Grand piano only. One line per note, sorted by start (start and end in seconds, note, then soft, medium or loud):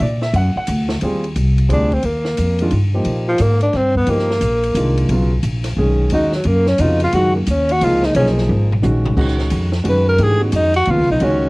0.02 0.22 D5 medium
0.22 0.34 E5 loud
0.36 0.56 F#5 loud
0.57 0.94 F#5 loud
1.03 1.22 G3 medium
1.03 1.22 C4 medium
1.03 1.23 F4 medium
1.03 1.23 G#4 medium
1.69 1.89 G3 medium
1.69 1.89 C4 medium
1.69 1.89 F4 medium
1.69 1.89 G#4 medium
2.61 2.72 D#3 medium
2.61 2.71 G#3 medium
2.61 2.72 D4 medium
2.61 2.72 F4 medium
2.94 3.38 F3 medium
2.94 3.38 A#3 medium
2.94 3.38 D#4 medium
2.94 3.38 G4 medium
4.08 4.28 F3 medium
4.08 4.28 A#3 medium
4.08 4.28 D#4 medium
4.08 4.28 G4 medium
4.76 5.10 D#3 medium
4.76 5.11 G#3 medium
4.76 5.10 D4 medium
4.76 5.10 F4 medium
5.11 5.30 C#3 medium
5.11 5.30 F#3 medium
5.11 5.30 B3 medium
5.11 5.30 F4 medium
5.79 6.11 D#3 medium
5.79 6.11 G#3 medium
5.79 6.11 C#4 medium
5.79 6.29 G#4 medium
6.12 6.32 D#3 medium
6.12 6.32 G#3 medium
6.12 6.32 C#4 medium
6.12 6.32 F#4 medium
6.81 7.32 C#3 medium
6.81 7.32 B3 medium
6.81 7.32 F4 medium
6.81 7.13 F#4 medium
7.15 7.34 D#3 medium
7.15 7.34 G#3 medium
7.15 7.34 C#4 medium
7.15 7.34 F#4 medium
7.82 8.15 F3 medium
7.82 8.14 A#3 medium
7.82 8.15 D#4 medium
7.82 8.15 G#4 medium
8.16 8.67 F3 medium
8.16 8.67 A#3 medium
8.16 8.67 D#4 medium
8.16 8.67 G#4 medium
8.82 9.15 D#3 medium
8.82 9.16 G#3 medium
8.82 9.15 C#4 medium
8.82 9.16 F#4 medium
9.17 9.68 D#3 medium
9.17 9.69 G#3 medium
9.17 9.68 C#4 medium
9.17 9.69 F#4 medium
9.84 10.36 D#3 medium
9.84 10.36 G#3 medium
9.84 10.36 C#4 medium
9.84 10.36 F#4 medium
10.18 10.39 E3 medium
10.18 10.38 A3 medium
10.18 10.39 D4 medium
10.18 10.39 G4 medium
10.41 10.70 D#3 medium
10.41 10.70 G#3 medium
10.41 10.70 C#4 medium
10.41 10.70 F#4 medium
10.88 11.39 C#3 medium
10.88 11.39 F#3 medium
10.88 11.39 B3 medium
10.88 11.39 F4 medium
11.21 11.49 D#3 medium
11.21 11.49 G#3 medium
11.21 11.49 C#4 medium
11.21 11.49 F#4 medium